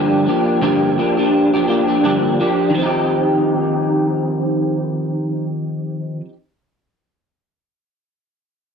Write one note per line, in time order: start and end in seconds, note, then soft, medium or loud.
0.00 0.27 G2 medium
0.00 0.27 D3 medium
0.00 0.25 F3 medium
0.00 0.25 A#3 medium
0.00 0.26 D4 medium
0.00 0.27 G4 loud
0.26 0.61 F3 medium
0.26 0.62 A#3 medium
0.26 0.62 D4 medium
0.26 0.62 G4 medium
0.62 0.97 G2 medium
0.62 0.98 D3 medium
0.62 0.97 F3 medium
0.62 0.97 A#3 medium
0.62 0.98 D4 medium
0.62 0.98 G4 medium
0.98 1.17 F3 medium
0.98 1.18 A#3 medium
0.98 1.17 D4 medium
0.98 1.16 G4 medium
1.17 1.54 F3 soft
1.17 1.54 A#3 soft
1.17 1.53 D4 medium
1.17 1.52 G4 medium
1.54 1.67 F3 soft
1.54 1.68 A#3 soft
1.54 1.68 D4 medium
1.54 1.69 G4 soft
1.68 1.88 F3 medium
1.68 1.88 A#3 medium
1.68 1.88 D4 medium
1.68 1.86 G4 medium
1.88 2.03 F3 soft
1.88 2.04 A#3 soft
1.88 2.03 D4 soft
1.88 2.04 G4 medium
2.04 2.39 G2 medium
2.04 2.39 D3 medium
2.04 2.39 F3 medium
2.04 2.39 A#3 medium
2.04 2.40 D4 medium
2.04 2.40 G4 medium
2.40 2.73 F3 medium
2.40 2.75 A#3 soft
2.40 2.76 D4 medium
2.40 2.76 G4 medium
2.70 6.20 D#3 medium
2.75 6.25 F3 medium
2.75 6.28 C4 medium
2.82 6.32 D#4 medium
2.82 6.36 G4 medium